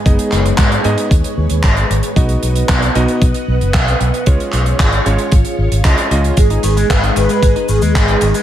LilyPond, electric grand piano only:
\new Staff \with { instrumentName = "Electric grand piano" } { \time 4/4 \key gis \minor \tempo 4 = 114 <b dis' gis' dis''>4. <b dis' gis' dis''>8 r2 | <b dis' fis' dis''>4. <b dis' fis' dis''>8 r2 | <gis cis' eis' cis''>4. <gis cis' eis' cis''>8 r4 <gis cis' eis' dis''>8 <gis cis' eis' dis''>8 | r1 | }